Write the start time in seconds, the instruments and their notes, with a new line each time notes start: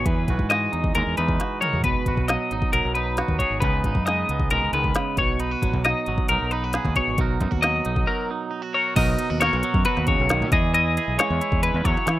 Already playing: clean electric guitar F#3 G#4
0.06 fingered electric bass E2, clean electric guitar E3 B4, kick, closed hi-hat
0.28 fingered electric bass B1, clean electric guitar F#4, kick, closed hi-hat
0.39 fingered electric bass G#2, kick
0.50 clean electric guitar G#3 D#5, snare, closed hi-hat
0.72 fingered electric bass E2, clean electric guitar D#4, closed hi-hat
0.84 kick
0.95 fingered electric bass D#2, clean electric guitar G#3 A#4, closed hi-hat
1.06 fingered electric bass E2
1.17 fingered electric bass E2, clean electric guitar D#4 B4, closed hi-hat
1.28 kick
1.40 clean electric guitar F#4, snare, closed hi-hat
1.61 clean electric guitar A#4 C#5, closed hi-hat, mid tom
1.73 fingered electric bass E2, floor tom
1.84 fingered electric bass B1, clean electric guitar B2 B4, kick, closed hi-hat
2.06 fingered electric bass G#1, clean electric guitar F#4, kick, closed hi-hat
2.17 fingered electric bass B1, kick
2.28 clean electric guitar F#3 D#5, snare, closed hi-hat
2.51 fingered electric bass G#1, clean electric guitar D#4, closed hi-hat
2.62 kick
2.73 fingered electric bass B1, clean electric guitar F#3 A#4, closed hi-hat
2.85 fingered electric bass B1
2.95 clean electric guitar D#4 B4, closed hi-hat
3.17 clean electric guitar F#4, snare, closed hi-hat
3.28 fingered electric bass D#2, kick
3.39 clean electric guitar G#4 C#5, kick, closed hi-hat
3.50 fingered electric bass G#1
3.60 fingered electric bass C#2, clean electric guitar C#3 G#3 B3 D#4 B4, kick, closed hi-hat
3.65 clean electric guitar B4
3.84 fingered electric bass G#1, clean electric guitar D#4, kick, closed hi-hat
3.95 fingered electric bass F#2, kick
4.06 clean electric guitar G#3 D#5, snare, closed hi-hat
4.29 fingered electric bass C#2, clean electric guitar B3, closed hi-hat
4.40 kick
4.50 fingered electric bass B1, clean electric guitar G#3 A#4, closed hi-hat
4.61 fingered electric bass C#2
4.73 fingered electric bass C#2, clean electric guitar D#3 B4, closed hi-hat
4.84 kick
4.95 clean electric guitar C#3, snare, closed hi-hat
5.17 fingered electric bass B1, clean electric guitar B2 C#5, kick, closed hi-hat
5.40 clean electric guitar D#4 B4, closed hi-hat
5.51 clean electric guitar F#4
5.62 fingered electric bass G#1, clean electric guitar F#3, kick, closed hi-hat
5.74 fingered electric bass B1, kick
5.84 clean electric guitar D#4 D#5, snare, closed hi-hat
6.06 fingered electric bass G#1, clean electric guitar F#3, closed hi-hat
6.18 kick
6.29 fingered electric bass B1, clean electric guitar D#4 A#4, closed hi-hat
6.41 fingered electric bass B1
6.51 clean electric guitar D#4 B4, closed hi-hat
6.64 clean electric guitar F#4
6.73 clean electric guitar G#4, snare, closed hi-hat
6.85 fingered electric bass D#2, kick, snare
6.96 clean electric guitar B2 C#5, kick, closed hi-hat
7.08 fingered electric bass G#1
7.18 fingered electric bass B1, clean electric guitar B2 F#3 D#4 F#4 A#4, kick, closed hi-hat
7.40 fingered electric bass F#2, clean electric guitar D#4, kick, closed hi-hat
7.51 fingered electric bass D#2, clean electric guitar F#4, kick
7.62 clean electric guitar F#3 D#5, snare, closed hi-hat
7.85 fingered electric bass B1, clean electric guitar D#4, closed hi-hat
7.96 kick
8.07 clean electric guitar F#3 A#4
8.31 clean electric guitar D#4
8.51 clean electric guitar D#4
8.62 clean electric guitar F#4
8.74 clean electric guitar A#4 C#5
8.96 fingered electric bass B1, clean electric guitar B2 F#3 D#4 F#4 A#4 D#5, kick, closed hi-hat, crash
9.19 clean electric guitar D#4, closed hi-hat
9.30 fingered electric bass D#2, clean electric guitar F#4
9.41 clean electric guitar A#4 C#5, snare, closed hi-hat
9.53 fingered electric bass B1, snare
9.63 clean electric guitar F#3, closed hi-hat
9.74 fingered electric bass F#2, kick
9.85 clean electric guitar F#4 B4, closed hi-hat
9.97 fingered electric bass D#2, snare
10.07 clean electric guitar C#3 C#5, kick, closed hi-hat
10.20 fingered electric bass B1
10.29 clean electric guitar D#3, snare, closed hi-hat
10.41 fingered electric bass B2, snare
10.52 fingered electric bass E2, clean electric guitar E3 G#4 D#5, kick, closed hi-hat
10.74 clean electric guitar E4 D#5, closed hi-hat
10.97 clean electric guitar G#4, closed hi-hat
11.08 fingered electric bass B1
11.18 clean electric guitar G#3 C#5, snare, closed hi-hat
11.30 fingered electric bass E2
11.41 clean electric guitar E4, closed hi-hat
11.52 fingered electric bass E2, kick
11.63 clean electric guitar B4, closed hi-hat
11.74 fingered electric bass E2
11.84 fingered electric bass E2, clean electric guitar F#3 C#5, kick, closed hi-hat
11.97 snare
12.06 clean electric guitar E3, fingered electric bass E3, snare, closed hi-hat